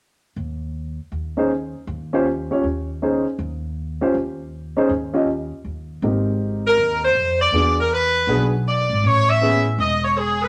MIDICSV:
0, 0, Header, 1, 4, 480
1, 0, Start_track
1, 0, Tempo, 376648
1, 1918, Time_signature, 4, 2, 24, 8
1, 13357, End_track
2, 0, Start_track
2, 0, Title_t, "Saxophone section"
2, 0, Program_c, 0, 65
2, 8503, Note_on_c, 0, 70, 79
2, 8932, Note_off_c, 0, 70, 0
2, 8982, Note_on_c, 0, 72, 80
2, 9411, Note_off_c, 0, 72, 0
2, 9450, Note_on_c, 0, 74, 87
2, 9884, Note_off_c, 0, 74, 0
2, 9944, Note_on_c, 0, 70, 84
2, 10099, Note_off_c, 0, 70, 0
2, 10105, Note_on_c, 0, 71, 91
2, 10824, Note_off_c, 0, 71, 0
2, 11065, Note_on_c, 0, 74, 86
2, 11498, Note_off_c, 0, 74, 0
2, 11540, Note_on_c, 0, 73, 97
2, 11832, Note_off_c, 0, 73, 0
2, 11846, Note_on_c, 0, 76, 102
2, 12312, Note_off_c, 0, 76, 0
2, 12491, Note_on_c, 0, 75, 92
2, 12766, Note_off_c, 0, 75, 0
2, 12792, Note_on_c, 0, 73, 79
2, 12949, Note_off_c, 0, 73, 0
2, 12974, Note_on_c, 0, 68, 79
2, 13268, Note_off_c, 0, 68, 0
2, 13284, Note_on_c, 0, 71, 80
2, 13357, Note_off_c, 0, 71, 0
2, 13357, End_track
3, 0, Start_track
3, 0, Title_t, "Upright piano"
3, 0, Program_c, 1, 0
3, 1744, Note_on_c, 1, 61, 49
3, 1750, Note_on_c, 1, 63, 46
3, 1759, Note_on_c, 1, 68, 45
3, 1768, Note_on_c, 1, 72, 56
3, 1902, Note_off_c, 1, 61, 0
3, 1905, Note_off_c, 1, 63, 0
3, 1909, Note_off_c, 1, 68, 0
3, 1914, Note_off_c, 1, 72, 0
3, 2715, Note_on_c, 1, 61, 61
3, 2722, Note_on_c, 1, 65, 53
3, 2730, Note_on_c, 1, 67, 56
3, 2737, Note_on_c, 1, 72, 67
3, 2868, Note_off_c, 1, 61, 0
3, 2872, Note_off_c, 1, 65, 0
3, 2876, Note_off_c, 1, 67, 0
3, 2879, Note_off_c, 1, 72, 0
3, 3196, Note_on_c, 1, 61, 46
3, 3204, Note_on_c, 1, 65, 44
3, 3207, Note_on_c, 1, 67, 45
3, 3211, Note_on_c, 1, 73, 51
3, 3349, Note_off_c, 1, 61, 0
3, 3353, Note_off_c, 1, 65, 0
3, 3354, Note_off_c, 1, 67, 0
3, 3357, Note_off_c, 1, 73, 0
3, 3850, Note_on_c, 1, 61, 46
3, 3856, Note_on_c, 1, 63, 43
3, 3862, Note_on_c, 1, 68, 42
3, 3865, Note_on_c, 1, 72, 50
3, 4121, Note_off_c, 1, 61, 0
3, 4124, Note_off_c, 1, 63, 0
3, 4127, Note_off_c, 1, 68, 0
3, 4128, Note_off_c, 1, 72, 0
3, 5113, Note_on_c, 1, 61, 48
3, 5118, Note_on_c, 1, 65, 47
3, 5121, Note_on_c, 1, 67, 50
3, 5133, Note_on_c, 1, 72, 59
3, 5269, Note_off_c, 1, 61, 0
3, 5271, Note_off_c, 1, 65, 0
3, 5273, Note_off_c, 1, 67, 0
3, 5279, Note_off_c, 1, 72, 0
3, 6074, Note_on_c, 1, 61, 57
3, 6076, Note_on_c, 1, 63, 51
3, 6087, Note_on_c, 1, 68, 52
3, 6094, Note_on_c, 1, 72, 59
3, 6229, Note_off_c, 1, 61, 0
3, 6231, Note_off_c, 1, 63, 0
3, 6236, Note_off_c, 1, 68, 0
3, 6240, Note_off_c, 1, 72, 0
3, 6543, Note_on_c, 1, 61, 52
3, 6547, Note_on_c, 1, 65, 48
3, 6552, Note_on_c, 1, 67, 49
3, 6561, Note_on_c, 1, 75, 57
3, 6704, Note_off_c, 1, 61, 0
3, 6706, Note_off_c, 1, 65, 0
3, 6709, Note_off_c, 1, 67, 0
3, 6713, Note_off_c, 1, 75, 0
3, 7685, Note_on_c, 1, 60, 42
3, 7691, Note_on_c, 1, 63, 39
3, 7701, Note_on_c, 1, 67, 41
3, 7705, Note_on_c, 1, 70, 45
3, 9017, Note_off_c, 1, 60, 0
3, 9020, Note_off_c, 1, 63, 0
3, 9025, Note_off_c, 1, 67, 0
3, 9027, Note_off_c, 1, 70, 0
3, 9599, Note_on_c, 1, 59, 45
3, 9606, Note_on_c, 1, 62, 45
3, 9612, Note_on_c, 1, 66, 44
3, 9618, Note_on_c, 1, 68, 51
3, 9873, Note_off_c, 1, 59, 0
3, 9877, Note_off_c, 1, 62, 0
3, 9880, Note_off_c, 1, 66, 0
3, 9883, Note_off_c, 1, 68, 0
3, 10554, Note_on_c, 1, 59, 51
3, 10560, Note_on_c, 1, 62, 47
3, 10560, Note_on_c, 1, 66, 45
3, 10569, Note_on_c, 1, 68, 55
3, 10830, Note_off_c, 1, 59, 0
3, 10833, Note_off_c, 1, 62, 0
3, 10833, Note_off_c, 1, 66, 0
3, 10837, Note_off_c, 1, 68, 0
3, 11998, Note_on_c, 1, 59, 48
3, 12002, Note_on_c, 1, 61, 48
3, 12003, Note_on_c, 1, 64, 44
3, 12013, Note_on_c, 1, 68, 54
3, 12270, Note_off_c, 1, 59, 0
3, 12272, Note_off_c, 1, 61, 0
3, 12273, Note_off_c, 1, 64, 0
3, 12278, Note_off_c, 1, 68, 0
3, 13357, End_track
4, 0, Start_track
4, 0, Title_t, "Upright bass"
4, 0, Program_c, 2, 32
4, 464, Note_on_c, 2, 39, 69
4, 1240, Note_off_c, 2, 39, 0
4, 1423, Note_on_c, 2, 39, 68
4, 2201, Note_off_c, 2, 39, 0
4, 2387, Note_on_c, 2, 39, 76
4, 3164, Note_off_c, 2, 39, 0
4, 3355, Note_on_c, 2, 39, 65
4, 4129, Note_off_c, 2, 39, 0
4, 4315, Note_on_c, 2, 39, 78
4, 5089, Note_off_c, 2, 39, 0
4, 5283, Note_on_c, 2, 39, 71
4, 6053, Note_off_c, 2, 39, 0
4, 6234, Note_on_c, 2, 39, 74
4, 7008, Note_off_c, 2, 39, 0
4, 7195, Note_on_c, 2, 39, 64
4, 7645, Note_off_c, 2, 39, 0
4, 7675, Note_on_c, 2, 32, 75
4, 8590, Note_off_c, 2, 32, 0
4, 8632, Note_on_c, 2, 39, 76
4, 9082, Note_off_c, 2, 39, 0
4, 9111, Note_on_c, 2, 41, 70
4, 9561, Note_off_c, 2, 41, 0
4, 9586, Note_on_c, 2, 40, 77
4, 10503, Note_off_c, 2, 40, 0
4, 10541, Note_on_c, 2, 35, 80
4, 11282, Note_off_c, 2, 35, 0
4, 11333, Note_on_c, 2, 32, 61
4, 11500, Note_off_c, 2, 32, 0
4, 11515, Note_on_c, 2, 33, 80
4, 12426, Note_off_c, 2, 33, 0
4, 12467, Note_on_c, 2, 28, 81
4, 13357, Note_off_c, 2, 28, 0
4, 13357, End_track
0, 0, End_of_file